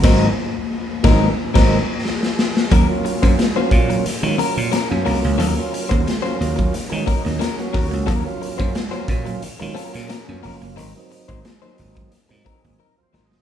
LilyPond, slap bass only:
\new Staff \with { instrumentName = "Slap bass" } { \clef bass \time 4/4 \key ees \dorian \tempo 4 = 89 aes,,8 r4 aes,,8 r16 aes,,8 r4 r16 | ees,16 r8 ges,16 r8 bes,8 r16 ees16 r16 bes,16 r16 ges,16 c,16 des,16 | ees,16 r8 ees,16 r8 ees,8 r16 ees16 r16 ees,16 r8 ees,16 des,16 | ees,16 r8 ges,16 r8 bes,8 r16 ees16 r16 bes,16 r16 ges,16 f,,16 ges,,16 |
aes,,16 r8 aes,,16 r8 aes,,8 r16 aes,16 r16 aes,,16 r8 aes,,16 ges,,16 | }